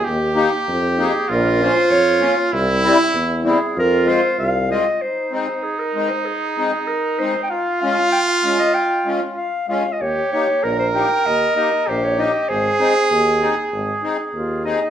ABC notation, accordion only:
X:1
M:2/4
L:1/8
Q:1/4=97
K:Fm
V:1 name="Accordion"
z [B,EG] z [B,EG] | z [B,DF] z [B,DF] | z [G,C=E] z [G,CE] | z [A,CF] z [A,CF] |
[K:Ab] z [A,CE] z [A,CE] | z [A,CE] z [A,CE] | z [A,DF] z [A,DF] | z [A,DF] z [A,DF] |
z [B,EG] z [B,EG] | z [B,EG] z [B,EG] | z [CEA] z [CEA] | z [CEA] z [CEA] |]